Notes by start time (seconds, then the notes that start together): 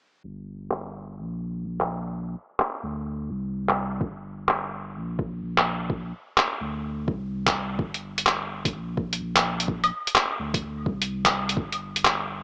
0.24 G1
0.71 clap
1.18 A#1
1.65 A#1
1.81 clap
2.59 clap
2.83 D2
3.30 C2
3.69 clap
4.01 G1, kick
4.48 clap
4.95 A#1
5.19 kick
5.42 A#1
5.58 clap
5.90 kick
6.37 clap
6.61 D2
7.08 C2, kick
7.47 kick, clap
7.79 G1, kick
7.94 closed hi-hat
8.18 closed hi-hat
8.26 clap
8.65 kick, closed hi-hat
8.74 A#1
8.97 kick
9.13 closed hi-hat
9.21 A#1
9.36 clap, closed hi-hat
9.60 closed hi-hat
9.68 kick
9.84 closed hi-hat, claves
10.07 closed hi-hat
10.15 clap
10.39 D2
10.54 kick, closed hi-hat
10.86 C2, kick
11.02 closed hi-hat
11.25 kick, clap, closed hi-hat, claves
11.49 closed hi-hat
11.57 G1, kick
11.72 closed hi-hat
11.96 closed hi-hat
12.05 clap